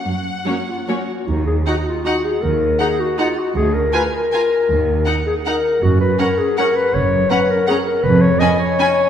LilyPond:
<<
  \new Staff \with { instrumentName = "Violin section" } { \time 3/4 \key fis \major \tempo 4 = 158 fis''2~ fis''8 r8 | \key ees \minor r4 bes''4 bes''4 | r4 bes''4 bes''4 | r4 bes''4 bes''4 |
r4 bes''4 bes''4 | r4 bes''4 bes''4 | r4 bes''4 bes''4 | r4 ces'''4 ces'''4 | }
  \new Staff \with { instrumentName = "Violin section" } { \time 3/4 \key fis \major r4 <cis' cis''>4 <cis' cis''>4 | \key ees \minor r4 ges''4 ges''4 | r4 ges''4 ges''4 | r4 aes''4 aes''4 |
r4 ges''4 ges''4 | r4 ges''4 ges''4 | r4 ges''4 ges''4 | r4 aes''4 aes''4 | }
  \new Staff \with { instrumentName = "Clarinet" } { \time 3/4 \key fis \major r4. eis'8 fis'4 | \key ees \minor ees'8 aes'8 ges'8 f'8 ges'8 aes'8 | bes'4 aes'8 ges'8 f'8 ges'8 | aes'8 bes'8 ces''8 bes'4.~ |
bes'4 r8 aes'8 bes'4 | ges'8 ces''8 bes'8 aes'8 bes'8 ces''8 | des''4 ces''8 bes'8 aes'8 bes'8 | ces''8 des''8 ees''8 des''4. | }
  \new Staff \with { instrumentName = "Viola section" } { \time 3/4 \key fis \major r4 <fis ais>4 <fis ais>4 | \key ees \minor r4 ees'4 ees'4 | r4 ees'4 ees'4 | r4 f'4 f'4 |
r4 ees'4 ees'4 | r4 des'4 des'4 | r4 des'4 des'4 | r4 des'4 des'4 | }
  \new Staff \with { instrumentName = "Cello section" } { \clef bass \time 3/4 \key fis \major fis,4 r2 | \key ees \minor ees,4 r2 | ees,4 r2 | d,4 r2 |
ees,4 r2 | ges,4 r2 | ges,4 r2 | f,4 r2 | }
  \new Staff \with { instrumentName = "Double bass section" } { \clef bass \time 3/4 \key fis \major r2. | \key ees \minor ees,4 r2 | ees,4 r2 | d,4 r2 |
ees,4 r2 | ges,,4 r2 | ges,,4 r2 | f,,4 r2 | }
>>